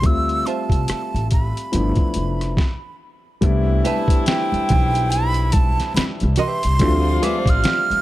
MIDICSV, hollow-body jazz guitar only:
0, 0, Header, 1, 3, 480
1, 0, Start_track
1, 0, Key_signature, 0, "major"
1, 0, Tempo, 845070
1, 21, Time_signature, 4, 2, 24, 8
1, 4554, End_track
2, 0, Start_track
2, 0, Title_t, "Hollow-body jazz guitar"
2, 0, Program_c, 0, 26
2, 266, Note_on_c, 0, 65, 70
2, 270, Note_on_c, 0, 72, 70
2, 272, Note_on_c, 0, 76, 73
2, 488, Note_off_c, 0, 65, 0
2, 490, Note_off_c, 0, 72, 0
2, 491, Note_off_c, 0, 76, 0
2, 2185, Note_on_c, 0, 67, 89
2, 2191, Note_on_c, 0, 71, 96
2, 2192, Note_on_c, 0, 76, 93
2, 2407, Note_off_c, 0, 67, 0
2, 2410, Note_off_c, 0, 71, 0
2, 2411, Note_off_c, 0, 76, 0
2, 3621, Note_on_c, 0, 67, 89
2, 3627, Note_on_c, 0, 71, 93
2, 3629, Note_on_c, 0, 76, 98
2, 3755, Note_off_c, 0, 67, 0
2, 3758, Note_off_c, 0, 71, 0
2, 3759, Note_off_c, 0, 76, 0
2, 4104, Note_on_c, 0, 68, 82
2, 4107, Note_on_c, 0, 71, 82
2, 4112, Note_on_c, 0, 76, 88
2, 4194, Note_off_c, 0, 68, 0
2, 4194, Note_on_c, 0, 69, 82
2, 4198, Note_off_c, 0, 71, 0
2, 4198, Note_on_c, 0, 72, 82
2, 4203, Note_off_c, 0, 76, 0
2, 4203, Note_on_c, 0, 77, 88
2, 4327, Note_off_c, 0, 69, 0
2, 4329, Note_off_c, 0, 72, 0
2, 4331, Note_off_c, 0, 77, 0
2, 4554, End_track
3, 0, Start_track
3, 0, Title_t, "Muted hollow-body jazz guitar strokes"
3, 3389, Note_on_c, 9, 29, 33
3, 3446, Note_off_c, 9, 29, 0
3, 4554, End_track
0, 0, End_of_file